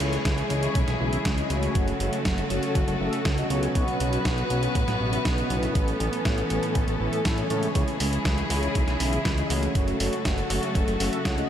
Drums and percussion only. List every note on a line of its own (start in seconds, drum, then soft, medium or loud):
0.00 closed hi-hat medium
0.13 closed hi-hat soft
0.25 kick loud
0.25 snare loud
0.25 closed hi-hat medium
0.38 closed hi-hat soft
0.50 closed hi-hat medium
0.63 closed hi-hat soft
0.75 kick loud
0.75 closed hi-hat medium
0.88 snare soft
0.88 closed hi-hat soft
1.13 closed hi-hat soft
1.25 kick loud
1.25 snare loud
1.25 closed hi-hat medium
1.38 closed hi-hat soft
1.50 closed hi-hat medium
1.63 closed hi-hat soft
1.75 kick loud
1.75 closed hi-hat medium
1.88 closed hi-hat soft
2.00 closed hi-hat medium
2.13 closed hi-hat soft
2.25 kick loud
2.25 snare loud
2.25 closed hi-hat medium
2.38 closed hi-hat soft
2.50 closed hi-hat medium
2.63 closed hi-hat soft
2.75 kick loud
2.75 closed hi-hat medium
2.88 closed hi-hat soft
3.13 closed hi-hat soft
3.25 kick loud
3.25 snare loud
3.25 closed hi-hat medium
3.38 closed hi-hat soft
3.50 closed hi-hat medium
3.63 closed hi-hat soft
3.75 kick loud
3.75 closed hi-hat medium
3.88 closed hi-hat soft
4.00 closed hi-hat medium
4.13 closed hi-hat soft
4.25 kick loud
4.25 snare loud
4.25 closed hi-hat medium
4.38 closed hi-hat soft
4.50 closed hi-hat medium
4.63 closed hi-hat soft
4.75 kick loud
4.75 closed hi-hat medium
4.88 snare soft
4.88 closed hi-hat soft
5.13 closed hi-hat soft
5.25 kick loud
5.25 snare loud
5.25 closed hi-hat medium
5.38 closed hi-hat soft
5.50 closed hi-hat medium
5.63 closed hi-hat soft
5.75 kick loud
5.75 closed hi-hat medium
5.88 closed hi-hat soft
6.00 closed hi-hat medium
6.13 closed hi-hat soft
6.25 kick loud
6.25 snare loud
6.25 closed hi-hat medium
6.38 closed hi-hat soft
6.50 closed hi-hat medium
6.63 closed hi-hat soft
6.75 kick loud
6.75 closed hi-hat medium
6.88 closed hi-hat soft
7.13 closed hi-hat soft
7.25 kick loud
7.25 snare loud
7.25 closed hi-hat medium
7.38 closed hi-hat soft
7.50 closed hi-hat medium
7.63 closed hi-hat soft
7.75 kick loud
7.75 closed hi-hat medium
7.88 closed hi-hat soft
8.00 open hi-hat loud
8.13 closed hi-hat soft
8.25 kick loud
8.25 snare loud
8.25 closed hi-hat medium
8.38 closed hi-hat soft
8.50 open hi-hat medium
8.63 closed hi-hat soft
8.75 kick loud
8.75 closed hi-hat medium
8.88 snare soft
8.88 closed hi-hat soft
9.00 open hi-hat loud
9.13 closed hi-hat soft
9.25 kick loud
9.25 snare loud
9.25 closed hi-hat medium
9.38 closed hi-hat soft
9.50 open hi-hat medium
9.63 closed hi-hat soft
9.75 kick loud
9.75 closed hi-hat medium
9.88 closed hi-hat soft
10.00 open hi-hat loud
10.13 closed hi-hat soft
10.25 kick loud
10.25 snare loud
10.25 closed hi-hat medium
10.38 closed hi-hat soft
10.50 open hi-hat medium
10.63 closed hi-hat soft
10.75 kick loud
10.75 closed hi-hat medium
10.88 closed hi-hat soft
11.00 open hi-hat loud
11.13 closed hi-hat soft
11.25 kick loud
11.25 snare loud
11.25 closed hi-hat medium
11.38 closed hi-hat soft